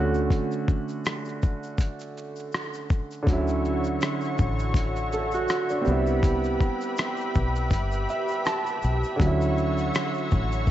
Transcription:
Already playing: D2 D3 A3 C#4
0.00 F#4
0.14 shaker
0.31 kick, closed hi-hat, shaker
0.51 shaker
0.68 kick, shaker
0.88 shaker
1.05 cross-stick, closed hi-hat, shaker
1.25 shaker
1.29 shaker
1.42 kick, shaker
1.63 shaker
1.78 kick, closed hi-hat, shaker
1.80 shaker
1.99 shaker
2.17 shaker
2.36 shaker
2.39 shaker
2.52 cross-stick, closed hi-hat, shaker
2.55 shaker
2.73 shaker
2.89 kick, shaker
2.91 shaker
3.11 shaker
3.23 D3 F#3
3.27 D2 C#4 F#4 C#5 E5 C#6, kick, closed hi-hat, shaker
3.33 E4
3.47 shaker
3.65 shaker
3.84 shaker
3.86 shaker
4.01 cross-stick, closed hi-hat, shaker
4.21 shaker
4.25 shaker
4.38 A1, kick, shaker
4.59 shaker
4.74 kick, closed hi-hat, shaker
4.76 shaker
4.96 shaker
5.12 A4, shaker
5.32 F#4, shaker
5.35 shaker
5.48 cross-stick, closed hi-hat, shaker
5.50 shaker
5.69 D4, shaker
5.81 G3 C4, shaker
5.86 C2 B3 G4 B4 B5, shaker
5.92 E4
6.07 shaker
6.23 kick, closed hi-hat, shaker
6.44 shaker
6.61 kick, shaker
6.81 shaker
6.97 closed hi-hat, shaker
6.98 cross-stick, shaker
7.17 shaker
7.21 shaker
7.34 B1, kick, shaker
7.55 shaker
7.70 G1, kick, closed hi-hat, shaker
7.73 shaker
7.92 shaker
8.09 E5, shaker
8.28 shaker
8.31 shaker
8.45 A5, cross-stick, closed hi-hat, shaker
8.47 shaker
8.66 shaker
8.82 shaker
8.84 B1, shaker
9.04 shaker
9.16 D3 F#3 F#4 C#5 C#6, kick
9.20 D2 C#4, closed hi-hat, shaker
9.26 E4
9.41 shaker
9.58 shaker
9.78 shaker
9.94 cross-stick, closed hi-hat, shaker
10.14 shaker
10.18 shaker
10.31 A1, kick, shaker
10.52 shaker
10.67 kick, shaker

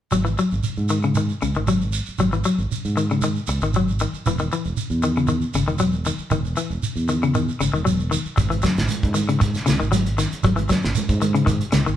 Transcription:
0.11 G#1 F#3, shekere
0.25 E3, shekere
0.38 F#3, shekere
0.51 G#1, shekere
0.63 muted fingered electric bass stroke, shekere
0.76 G#2, shekere
0.89 D#3, shekere
1.03 C#3, shekere
1.15 D#3, shekere
1.29 shekere
1.42 C#2 C#3, shekere
1.54 G#1 D#3, shekere
1.67 F#3, shekere
1.81 shekere
1.93 shekere
2.06 muted fingered electric bass stroke, shekere
2.18 G#1 F#3, shekere
2.32 E3, shekere
2.44 F#3, shekere
2.58 G#1, shekere
2.72 shekere
2.85 G#2, shekere
2.97 D#3, shekere
3.10 C#3, shekere
3.22 D#3, shekere
3.35 shekere
3.47 C#2, muted clean electric guitar stroke, shekere
3.61 G#1 D#3, shekere
3.73 F#3, shekere
3.88 shekere
4.00 D#3, shekere
4.13 muted fingered electric bass stroke, shekere
4.26 E1 E3, shekere
4.39 D#3, shekere
4.52 E3, shekere
4.65 E1, shekere
4.77 muted fingered electric bass stroke, shekere
4.90 E2, shekere
5.03 D#3, shekere
5.16 C#3, shekere
5.27 D#3, shekere
5.41 shekere
5.54 G#1 C#3, shekere
5.67 E1 D#3, shekere
5.78 F#3, shekere
5.92 shekere
6.05 D#3, shekere
6.18 muted fingered electric bass stroke, shekere
6.31 E1 D#3, shekere
6.45 shekere
6.56 E3, shekere
6.70 E1, shekere
6.82 muted fingered electric bass stroke, shekere
6.96 E2, shekere
7.08 D#3, shekere
7.23 C#3, shekere
7.34 D#3, shekere
7.48 shekere
7.61 G#1 C#3, shekere
7.73 E1 D#3, shekere
7.85 F#3, shekere
8.00 shekere
8.11 D#3, shekere
8.25 muted fingered electric bass stroke, shekere
8.37 G#1, muted clean electric guitar stroke, kick, closed hi-hat, high conga, shekere
8.50 E3, closed hi-hat, shekere
8.62 F#3, kick, snare, closed hi-hat, high conga, shekere
8.76 G#1, snare, closed hi-hat, shekere
8.88 closed hi-hat, high conga, shekere
9.02 G#2, kick, closed hi-hat, high conga, shekere
9.14 D#3, closed hi-hat, high conga, shekere
9.28 C#3, closed hi-hat, shekere
9.40 muted clean electric guitar stroke, kick, closed hi-hat, high conga, shekere
9.54 snare, closed hi-hat, shekere
9.66 C#2 C#3, snare, closed hi-hat, high conga, shekere
9.80 G#1 D#3, shekere
9.92 F#3, closed hi-hat, high conga, shekere
10.06 closed hi-hat, shekere
10.18 D#3, snare, closed hi-hat, shekere
10.31 muted fingered electric bass stroke, closed hi-hat, shekere
10.43 G#1 F#3, kick, closed hi-hat, high conga, shekere
10.56 E3, closed hi-hat, high conga, shekere
10.69 F#3, kick, snare, closed hi-hat, high conga, shekere
10.83 G#1, snare, shekere
10.95 closed hi-hat, high conga, shekere
11.09 G#2, kick, closed hi-hat, high conga, shekere
11.22 D#3, closed hi-hat, high conga, shekere
11.35 C#3, closed hi-hat, shekere
11.46 D#3, kick, closed hi-hat, shekere
11.61 closed hi-hat, shekere
11.72 C#2 C#3, snare, closed hi-hat, high conga, shekere
11.86 G#1 D#3, shekere

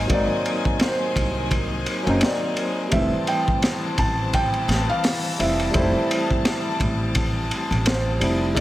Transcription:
Already playing: D#3 F#3 A#3 C4 D#4 C5 G#5
0.07 G#1 F#3 A#3 D5, kick, ride
0.11 C4 D#4
0.46 ride
0.65 kick
0.80 C5, snare, ride
1.16 C2, kick, ride
1.51 kick, ride
1.86 ride
2.03 F#1 F#3 A#3
2.07 C4 D#4, ride
2.21 D5, snare, ride
2.57 ride
2.88 F1 E3 G3 A3 C5 E5, kick, ride
2.93 E3 C4 A5
3.27 G5, ride
3.48 kick
3.62 snare, ride
3.98 A1 A5, kick, ride
4.33 G5, kick, ride
4.54 ride
4.68 A1, snare, ride
4.90 F5
5.04 snare, open hi-hat
5.38 F1 G3 A3 C4 E4 E5, ride
5.60 ride
5.71 F1 G3 A3, kick, ride
5.75 C4 E4 C5
6.11 ride
6.31 kick
6.45 snare, ride
6.80 A1, kick, ride
7.15 kick, ride
7.51 ride
7.71 A1, ride
7.86 C5, snare, ride
8.20 F1 G3 A3 C4 E4, ride
8.54 A#1 G#3 A#3 G#4 D5 A#5, kick, ride

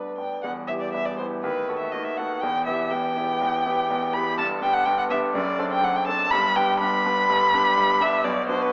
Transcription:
Already playing: D2 G2 G3 B3 D4 B4 D5
0.18 B3 D4 D5 G5
0.42 E1 E2 G3 F#5
0.67 B3 E4 G4 E5
0.81 D5
0.93 E1 E2 E5
1.05 D5
1.18 B3 E4 G4 C5
1.43 D#2 D#3 A3 B4
1.69 B3 F#4 A4
1.79 E5
1.92 D#2 D#3 D#5
2.04 E5
2.17 B3 F#4 A4 F#5
2.41 E1 E2 B3 G5
2.66 B3 E4 G4 E5
2.90 E1 E2 G5
3.16 B3 E4 G4
3.41 E1 E2
3.66 B3 E4 G4
3.90 E1 E2
4.13 B3 E4 G4 B5
4.38 G1 G2 A5
4.61 B3 D4 G4 G5
4.74 F#5
4.85 G1 G2 G5
4.99 F#5
5.10 B3 D4 G4 E5
5.33 F#1 F#2 F#3 D5
5.59 C4 D4 A4
5.72 G5
5.82 F#1 F#2 F#5
5.96 G5
6.07 C4 D4 A4 A5
6.31 G1 G2 G3 B5
6.56 B3 D4 G4 G5
6.80 G1 G2 B5
7.06 B3 D4 G4
7.29 G1 G2
7.54 B3 D4 G4
7.77 G1 G2
8.00 B3 D4 G4 E5
8.24 B1 B2 F#3 D5
8.48 B3 D4 F#4 C5
8.62 B4

